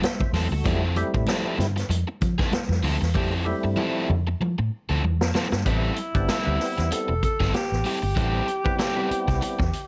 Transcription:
0.02 tonewheel organ C5 E5, muted overdriven electric guitar stroke, snare, closed hi-hat, high conga
0.20 kick, high conga
0.33 fingered electric bass E2, overdriven electric guitar F#3 C4 E4 A4, tonewheel organ A4 C5, snare, open hi-hat, high conga
0.51 fingered electric bass D2, tonewheel organ F#4 A4, muted overdriven electric guitar stroke
0.64 fingered electric bass F2, overdriven electric guitar E3 B3 D#4 G#4, tonewheel organ G3 A3 C4 E4, kick, closed hi-hat, muted conga
0.77 overdriven electric guitar F3 C4 E4 A4
0.96 tonewheel organ G3 A3 C4 E4, closed hi-hat, muted conga
1.14 fingered electric bass A2, muted overdriven electric guitar stroke, kick
1.27 overdriven electric guitar F3 C4 E4 A4, snare, closed hi-hat, high conga
1.58 fingered electric bass G2, muted overdriven electric guitar stroke, snare, closed hi-hat, low conga
1.76 muted overdriven electric guitar stroke, snare, closed hi-hat
1.89 fingered electric bass F2, muted overdriven electric guitar stroke, closed hi-hat, muted conga
2.07 muted overdriven electric guitar stroke
2.21 fingered electric bass F3, kick, closed hi-hat, muted conga
2.38 overdriven electric guitar F3 C4 E4 A4, kick, snare
2.52 muted overdriven electric guitar stroke, snare, closed hi-hat, high conga
2.69 fingered electric bass F2, snare, high conga
2.83 fingered electric bass D2, overdriven electric guitar F3 C4 E4 A4, open hi-hat, high conga
3.01 fingered electric bass E2, muted overdriven electric guitar stroke, snare
3.14 fingered electric bass F2, overdriven electric guitar F3 C4 E4 A4, tonewheel organ G3 A3 C4 G4, kick, muted conga
3.45 tonewheel organ G3 A3 C4 E4, muted conga
3.64 fingered electric bass G2, muted overdriven electric guitar stroke
3.76 overdriven electric guitar F3 C4 E4 A4, high conga
4.09 fingered electric bass F2, muted overdriven electric guitar stroke, low conga
4.27 muted overdriven electric guitar stroke
4.41 fingered electric bass F3, muted overdriven electric guitar stroke, muted conga
4.58 fingered electric bass A2, muted overdriven electric guitar stroke
4.89 fingered electric bass D2, overdriven electric guitar F3 C4 E4 A4
5.03 fingered electric bass E2, muted overdriven electric guitar stroke, high conga
5.21 fingered electric bass F2, snare
5.34 overdriven electric guitar F3 C4 E4 A4, snare, high conga
5.52 fingered electric bass G2, muted overdriven electric guitar stroke, snare
5.65 fingered electric bass A1, tonewheel organ G3 B3 C4 E4, overdriven electric guitar G3 C4 E4 A4, alto saxophone E4, kick, closed hi-hat
5.96 closed hi-hat
6.14 fingered electric bass G1, tonewheel organ G3 B3 C4 D4, muted overdriven electric guitar stroke, kick, closed hi-hat
6.28 overdriven electric guitar G3 C4 E4 A4, snare, closed hi-hat
6.45 fingered electric bass D2, tonewheel organ G3 B3 C4 E4
6.60 muted overdriven electric guitar stroke, snare, open hi-hat
6.78 fingered electric bass E2, muted overdriven electric guitar stroke, snare, closed hi-hat
6.91 alto saxophone A4, muted overdriven electric guitar stroke, muted fingered electric bass stroke, closed hi-hat
7.08 fingered electric bass E1, muted overdriven electric guitar stroke
7.23 alto saxophone A4, kick, closed hi-hat
7.40 fingered electric bass G1, overdriven electric guitar G3 C4 E4 A4, kick, snare
7.54 alto saxophone G4, muted fingered electric bass stroke, muted overdriven electric guitar stroke, snare, closed hi-hat
7.72 fingered electric bass A1, snare
7.84 overdriven electric guitar G3 C4 E4 A4, alto saxophone G4, open hi-hat
8.02 fingered electric bass G1, muted overdriven electric guitar stroke
8.15 fingered electric bass A1, tonewheel organ G3 B3 C4 E4, overdriven electric guitar G3 C4 E4 A4, kick, closed hi-hat
8.48 closed hi-hat
8.64 tonewheel organ G3 B3 C4 E4, muted overdriven electric guitar stroke, muted fingered electric bass stroke, kick
8.79 overdriven electric guitar G3 C4 E4 A4, snare, closed hi-hat
8.95 tonewheel organ G3 B3 C4 E4
9.10 muted overdriven electric guitar stroke, muted fingered electric bass stroke, closed hi-hat
9.28 fingered electric bass C2, muted overdriven electric guitar stroke, kick, snare, closed hi-hat
9.42 muted overdriven electric guitar stroke, closed hi-hat
9.59 fingered electric bass E2, muted overdriven electric guitar stroke, kick, snare
9.73 closed hi-hat

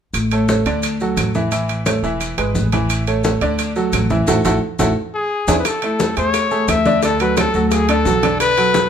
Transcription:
0.14 upright bass A1, high conga, high timbale, maracas
0.31 upright piano A3 A4 C#5, high conga, high timbale, maracas
0.49 upright piano A3 A4 C#5, high conga, maracas
0.65 upright bass D2, upright piano D3 D4 D5, high conga, high timbale, maracas
0.83 high conga, high timbale, maracas
1.00 upright piano F#3 F#4 A4, high conga, maracas
1.17 upright bass A1, high conga, high timbale, maracas
1.34 upright piano E3 E4 E5, high conga, maracas
1.52 upright piano E3 E4 E5, high conga, high timbale, maracas
1.69 high conga, high timbale, maracas
1.86 upright piano A3 A4 C#5, high conga, high timbale, maracas
2.03 upright bass E1, upright piano E3 E4 E5, high conga, maracas
2.21 high conga, high timbale, maracas
2.38 upright bass G#1, upright piano G#3 G#4 B4, high conga, high timbale, maracas
2.55 upright bass A1, high conga, maracas
2.72 upright piano E3 E4 E5, high conga, high timbale, maracas
2.90 high conga, high timbale, maracas
3.07 upright piano A3 A4 C#5, high conga, high timbale, maracas
3.24 upright piano A3 A4 C#5, high conga, maracas
3.41 upright bass D2, upright piano D3 D4 D5, high conga, high timbale, maracas
3.59 high conga, high timbale, maracas
3.76 upright piano F#3 F#4 A4, high conga, maracas
3.92 upright bass A1, high conga, high timbale, maracas
4.10 upright piano E3 E4 E5, high conga, maracas
4.27 upright bass A1, upright piano E4 F#4 A4, high conga, high timbale, maracas
4.44 upright bass A1, upright piano E4 F#4 A4, high conga, high timbale, maracas
4.79 upright bass A1, upright piano E4 F#4 A4, high conga, high timbale, maracas
5.15 trumpet G#4
5.48 upright bass E2, upright piano D4 E4 G#4, high conga, high timbale, maracas
5.59 trumpet B4
5.65 trumpet A4, high bongo, high conga, high timbale, maracas
5.82 upright piano A3 E4 A4, high conga, high timbale, maracas
5.99 high bongo, high conga, maracas
6.17 upright bass E2, upright piano A3 G#4 A4, trumpet C#5, high bongo, high conga, high timbale, maracas
6.34 high bongo, high conga, high timbale, maracas
6.51 upright piano A3 G#4 A4, high bongo, high conga, maracas
6.68 upright bass D2, trumpet E5, high bongo, low bongo, high conga, high timbale, maracas
6.85 upright piano D3 D4 D5, high bongo, high conga, maracas
7.02 upright piano D3 D4 D5, trumpet A4, high bongo, high conga, high timbale, maracas
7.20 upright piano F#3 F#4 A4, trumpet B4, high conga, high timbale, maracas
7.37 trumpet A4, high bongo, high conga, high timbale, maracas
7.54 upright bass D2, upright piano F#3 F#4 A4, high bongo, high conga, maracas
7.68 trumpet A4, high bongo, high conga, high timbale, maracas
7.73 trumpet G#4
7.89 upright piano D3 D4 D5, trumpet A4, high bongo, high conga, high timbale, maracas
8.05 upright bass B1, upright piano F#3 F#4 A4, high bongo, low bongo, high conga, maracas
8.23 upright piano D3 D4 D5, high bongo, high conga, high timbale, maracas
8.40 trumpet B4, high bongo, high conga, high timbale, maracas
8.57 upright piano F#3 F#4 A4, high conga, high timbale, maracas
8.74 high bongo, high conga, maracas

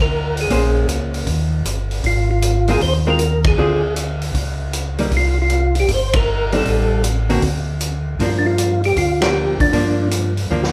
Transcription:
Already playing: tonewheel organ D2
0.02 tonewheel organ A#4
0.37 tonewheel organ G#4, open hi-hat
0.50 tonewheel organ A#1, hollow-body jazz guitar A#3 C#4 G#4 C5, kick, open hi-hat
0.88 tonewheel organ C#2, closed hi-hat
1.14 open hi-hat
1.27 tonewheel organ D#2, kick, open hi-hat
1.65 tonewheel organ G1, closed hi-hat
1.91 open hi-hat
2.04 tonewheel organ G#1 F4, kick, open hi-hat
2.31 tonewheel organ F4
2.42 closed hi-hat
2.68 hollow-body jazz guitar G#3 C4 F4 A#4, tonewheel organ G#4, open hi-hat
2.81 tonewheel organ D#2 C5, kick, open hi-hat
3.07 hollow-body jazz guitar G#3 C4 F4 A#4, tonewheel organ A#4
3.19 closed hi-hat
3.44 tonewheel organ G#4, kick, ride
3.58 tonewheel organ D2, hollow-body jazz guitar D3 C4 F4 G#4
3.96 closed hi-hat
4.22 open hi-hat
4.34 tonewheel organ C#2, kick, open hi-hat
4.73 closed hi-hat
4.98 hollow-body jazz guitar G3 A#3 D#4, open hi-hat
5.11 tonewheel organ C2, kick, open hi-hat
5.17 tonewheel organ F4
5.42 tonewheel organ F4
5.50 closed hi-hat
5.75 open hi-hat
5.80 tonewheel organ G4
5.88 tonewheel organ G1, kick, open hi-hat
5.94 tonewheel organ C5
6.13 tonewheel organ A#4, kick, ride
6.52 hollow-body jazz guitar G3 C4 D#4, tonewheel organ A4, open hi-hat
6.65 tonewheel organ A1, kick, open hi-hat
7.04 closed hi-hat
7.29 hollow-body jazz guitar D3 A#3 C4 F#4, open hi-hat
7.42 tonewheel organ D2, kick, open hi-hat
7.81 closed hi-hat
8.19 tonewheel organ G2 F4, hollow-body jazz guitar F3 A#3 D4, kick, open hi-hat
8.39 tonewheel organ D4
8.46 tonewheel organ F4
8.58 closed hi-hat
8.84 tonewheel organ G4, open hi-hat
8.96 tonewheel organ D2 F4, kick, open hi-hat
9.22 hollow-body jazz guitar F3 A#3 D4, tonewheel organ G4, snare, ride
9.60 tonewheel organ D2 D4, kick, open hi-hat
9.73 tonewheel organ G2, hollow-body jazz guitar F3 A#3 D4, kick, open hi-hat
10.11 closed hi-hat
10.37 open hi-hat
10.50 tonewheel organ D2, hollow-body jazz guitar F3 A#3 D4
10.63 snare

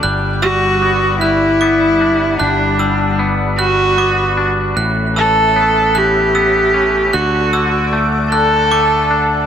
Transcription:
Already playing: clean electric guitar D4, analog synth pad D5
0.03 fingered electric bass G1, clean electric guitar G3, analog synth pad G3 F#5 B5, glockenspiel F#6
0.42 clean electric guitar G3, cello F#4, glockenspiel E6
0.82 clean electric guitar B3
1.21 clean electric guitar G3, cello E4, glockenspiel F#6
1.61 clean electric guitar B3, glockenspiel D6
2.01 clean electric guitar D4
2.40 fingered electric bass G1, clean electric guitar G3, cello D4, glockenspiel F#6
2.79 clean electric guitar G3, glockenspiel E6
3.19 clean electric guitar B3
3.58 clean electric guitar G3, cello F#4, glockenspiel F#6
3.98 clean electric guitar B3, glockenspiel D6
4.37 clean electric guitar D4
4.76 fingered electric bass A1, clean electric guitar A2, analog synth pad A4 C#5 E5, glockenspiel F#6
5.16 clean electric guitar E3, cello A4, glockenspiel E6
5.56 clean electric guitar B3
5.95 clean electric guitar E3, cello G4, glockenspiel F#6
6.35 clean electric guitar B3, glockenspiel E6
6.74 clean electric guitar C#4
7.13 fingered electric bass D2, clean electric guitar D3, cello F#4, analog synth pad D5 F#5 D6, glockenspiel F#6
7.53 clean electric guitar D3, glockenspiel E6
7.93 clean electric guitar A3
8.31 clean electric guitar D3, cello A4, glockenspiel F#6
8.71 clean electric guitar A3, glockenspiel D6
9.11 clean electric guitar D4

